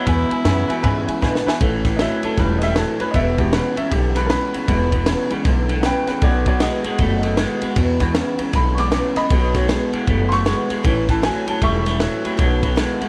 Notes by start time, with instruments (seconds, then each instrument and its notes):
Already playing: tenor saxophone E4
0.06 clean electric guitar E2 B2, steel-string acoustic guitar E2 B2 E3 G#3 B3 E4, upright bass E2, upright piano B4 E5 G#5, kick, ride
0.30 steel-string acoustic guitar G#3 E4, upright piano B4 E5 G#5, muted upright bass stroke, ride
0.45 steel-string acoustic guitar E2 B2 E3 G#3 B3 E4, clean electric guitar E2 C#3, upright bass F#2, upright piano B4 E5 G#5, snare, ride
0.68 clean electric guitar E2 B2, steel-string acoustic guitar E3 G#3 B3 E4, upright piano B4 E5 G#5, muted upright bass stroke, ride
0.83 clean electric guitar E2 C#3, upright bass G#2, steel-string acoustic guitar E3 G#3 B3 E4, upright piano B4 E5 G#5, kick, ride
1.07 steel-string acoustic guitar E3 G#3 B3 E4, upright piano B4 E5 G#5, muted upright bass stroke, ride
1.21 steel-string acoustic guitar E2 B2 E3 G#3 B3 E4, clean electric guitar E2 D3, upright bass B2, upright piano B4 E5 G#5, kick, snare
1.35 snare
1.46 clean electric guitar E2 B2, steel-string acoustic guitar E3 G#3 B3 E4, upright piano B4 E5 G#5, muted upright bass stroke, snare
1.60 upright bass A1, steel-string acoustic guitar A2 E3 A3 C#4 E4, clean electric guitar A2 E3, upright piano E3 A3 C#4, kick, ride
1.85 clean electric guitar A2 E3, steel-string acoustic guitar A3 C#4 E4, kick, snare, ride
1.97 clean electric guitar A2 F#3, steel-string acoustic guitar A2 E3 A3, upright piano D#5, snare, ride
2.01 steel-string acoustic guitar C#4 E4, upright piano E5
2.23 clean electric guitar A2 F#3, steel-string acoustic guitar A3 C#4 E4, upright piano A4, muted upright bass stroke, ride
2.37 upright bass E1, clean electric guitar A2 G3, steel-string acoustic guitar E3 A3 C#4 E4, upright piano E3 A3 C#4 B4, kick, snare, ride
2.58 clean electric guitar A2 G3, steel-string acoustic guitar E4, upright piano D#5, snare, ride
2.62 steel-string acoustic guitar A3 C#4, upright piano E5
2.76 clean electric guitar A2 F#3, steel-string acoustic guitar A2 E3 A3 C#4 E4, upright piano A4, snare, ride
3.00 clean electric guitar A2 F#3, steel-string acoustic guitar A3 C#4 E4, upright piano B4, muted upright bass stroke, ride
3.11 upright bass E1, clean electric guitar E2 B2, steel-string acoustic guitar E2 B2, upright piano D#5, kick, ride
3.15 steel-string acoustic guitar E3 G#3 B3 E4, upright piano E5
3.38 clean electric guitar E2 B2, upright piano E3 G#3 B3 G4, steel-string acoustic guitar E3 G#3 B3 E4, kick, ride
3.52 steel-string acoustic guitar E2 B2 E3 G#3 B3 E4, clean electric guitar E2 C#3, upright piano B4, snare, ride
3.76 clean electric guitar E2 C#3, steel-string acoustic guitar G#3 B3 E4, upright piano E5, muted upright bass stroke, ride
3.90 upright bass B1, clean electric guitar E2 D3, steel-string acoustic guitar E3 G#3 B3 E4, upright piano G4, kick, ride
4.15 clean electric guitar E2 D3, steel-string acoustic guitar E3 G#3 B3 E4, upright piano B4, snare, ride
4.26 steel-string acoustic guitar E2 B2 E3 G#3, clean electric guitar E2 C#3, upright piano E3 G#3 B3 A#4, snare, ride
4.30 steel-string acoustic guitar B3 E4, upright piano B4
4.54 clean electric guitar E2 C#3, steel-string acoustic guitar E3 G#3 B3 E4, muted upright bass stroke, ride
4.67 upright bass E1, clean electric guitar E2 B2, steel-string acoustic guitar E2 B2 E3 G#3 B3 E4, upright piano E3 G#3 B3, kick, ride
4.92 clean electric guitar E2 B2, steel-string acoustic guitar E3 G#3 B3 E4, kick, ride
5.06 steel-string acoustic guitar E2 B2 E3 G#3 B3 E4, clean electric guitar E2 C#3, snare, ride
5.30 clean electric guitar E2 C#3, upright piano E3 G#3 B3, steel-string acoustic guitar E3 G#3 B3 E4, muted upright bass stroke, ride
5.45 upright bass B1, clean electric guitar E2 D3, steel-string acoustic guitar E3 G#3 B3 E4, kick, snare, ride
5.69 clean electric guitar E2 D3, steel-string acoustic guitar E3 G#3 B3 E4, ride
5.81 clean electric guitar E2 C#3, steel-string acoustic guitar E2 B2 E3 G#3 B3, upright piano B4 F#5, snare, ride
5.85 steel-string acoustic guitar E4, upright piano G5
6.07 clean electric guitar E2 C#3, steel-string acoustic guitar E3 G#3 B3 E4, upright piano B4 G5, muted upright bass stroke, snare, ride
6.22 upright bass B1, steel-string acoustic guitar B2 D#3 A3 B3 F#4, clean electric guitar B2 F#3, upright piano D#3 A3 C#4 F#4 D5, kick, ride
6.46 clean electric guitar B2 F#3, steel-string acoustic guitar A3 B3 F#4, upright piano F#4 D5, kick, ride
6.60 steel-string acoustic guitar B2 D#3 A3 B3 F#4, clean electric guitar B2 G#3, upright piano F#4 D#5, snare, ride
6.84 clean electric guitar B2 G#3, steel-string acoustic guitar A3 B3 F#4, muted upright bass stroke, ride
6.98 upright bass F#1, clean electric guitar B2 A3, steel-string acoustic guitar D#3 A3 B3 F#4, kick, ride
7.23 clean electric guitar B2 A3, steel-string acoustic guitar A3 B3 F#4, ride
7.37 steel-string acoustic guitar B2 D#3 A3 B3 F#4, clean electric guitar B2 G#3, snare, ride
7.61 clean electric guitar B2 G#3, steel-string acoustic guitar A3 B3 F#4, muted upright bass stroke, ride
7.76 steel-string acoustic guitar E2 B2 E3 G#3 B3 E4, upright bass E2, clean electric guitar E2 B2, kick, ride
8.00 clean electric guitar E2 B2, upright piano E3 G#3 B3, steel-string acoustic guitar E3 G#3 B3, kick, snare, ride
8.14 steel-string acoustic guitar E2 B2 E3 G#3 B3 E4, clean electric guitar E2 C#3, snare, ride
8.39 clean electric guitar E2 C#3, steel-string acoustic guitar E3 G#3 B3 E4, muted upright bass stroke, ride
8.53 upright bass B1, clean electric guitar E2 D3, steel-string acoustic guitar G#3 B3 E4, upright piano B5, kick, snare, ride
8.75 clean electric guitar E2 D3, upright piano E3 G#3 B3 C#6, steel-string acoustic guitar G#3 B3 E4, snare, ride
8.79 steel-string acoustic guitar E3, upright piano D6
8.91 steel-string acoustic guitar E2 B2 E3 G#3 B3 E4, clean electric guitar E2 C#3, upright piano D6, snare, ride
9.15 clean electric guitar E2 C#3, steel-string acoustic guitar G#3 B3 E4, upright piano D#5 B5, muted upright bass stroke, snare, ride
9.29 upright bass B1, steel-string acoustic guitar B2 D#3 A3 B3 F#4, clean electric guitar B2 F#3, kick, ride
9.54 clean electric guitar B2 F#3, upright piano D#3 A3 C#4, steel-string acoustic guitar A3 B3 F#4, kick, snare, ride
9.68 steel-string acoustic guitar B2 D#3 A3 B3 F#4, clean electric guitar B2 G#3, snare, ride
9.92 clean electric guitar B2 G#3, steel-string acoustic guitar A3 B3 F#4, muted upright bass stroke, ride
10.06 upright bass F#1, clean electric guitar B2 A3, steel-string acoustic guitar D#3 A3 B3 F#4, kick, ride
10.29 clean electric guitar B2 A3, steel-string acoustic guitar B3 F#4, upright piano C6 C#6, snare, ride
10.33 steel-string acoustic guitar A3
10.45 steel-string acoustic guitar B2 D#3 A3 B3 F#4, clean electric guitar B2 G#3, snare, ride
10.69 clean electric guitar B2 G#3, steel-string acoustic guitar A3 B3 F#4, muted upright bass stroke, ride
10.83 upright bass A1, steel-string acoustic guitar A2 E3 A3 C#4 E4, clean electric guitar A2 E3, upright piano E3 A3 C#4, kick, ride
11.07 clean electric guitar A2 E3, steel-string acoustic guitar A3 C#4 E4, upright piano A5, kick, snare, ride
11.22 steel-string acoustic guitar A2 E3 A3 C#4 E4, clean electric guitar A2 F#3, upright piano G#5, snare, ride
11.46 clean electric guitar A2 F#3, steel-string acoustic guitar A3 C#4 E4, upright piano A5, muted upright bass stroke, ride
11.61 upright bass E1, clean electric guitar A2 G3, steel-string acoustic guitar E3 A3 C#4 E4, upright piano E5 C#6, kick, ride
11.85 clean electric guitar A2 G3, steel-string acoustic guitar A3 C#4 E4, snare, ride
11.99 steel-string acoustic guitar A2 E3 A3 C#4 E4, clean electric guitar A2 F#3, snare, ride
12.23 clean electric guitar A2 F#3, steel-string acoustic guitar A3 C#4 E4, muted upright bass stroke, ride
12.37 upright bass B1, steel-string acoustic guitar B2 D#3 A3 B3 F#4, clean electric guitar B2 F#3, upright piano D#3 A3 C#4, kick, ride
12.61 clean electric guitar B2 F#3, steel-string acoustic guitar A3 B3 F#4, kick, ride
12.76 steel-string acoustic guitar B2 D#3 A3 B3 F#4, clean electric guitar B2 G#3, snare, ride
13.00 clean electric guitar B2 G#3, steel-string acoustic guitar A3 B3 F#4, muted upright bass stroke, ride